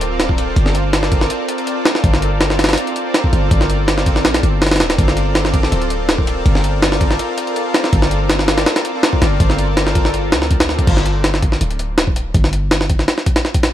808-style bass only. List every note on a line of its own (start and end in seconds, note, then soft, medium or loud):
0.00 0.55 D1 loud
0.56 1.29 G1 loud
2.04 2.76 G1 loud
3.33 3.49 G1 loud
3.51 4.26 G1 loud
4.25 4.41 A#1 medium
4.43 4.82 G1 medium
4.80 4.97 D1 medium
4.98 5.71 G1 loud
5.72 6.44 D1 loud
6.46 7.18 G1 loud
7.93 8.65 G1 loud
9.22 9.38 G1 loud
9.40 10.34 G1 loud
10.32 10.77 D2 loud
10.87 11.60 G1 loud
11.61 12.33 D1 loud
12.34 13.07 G1 loud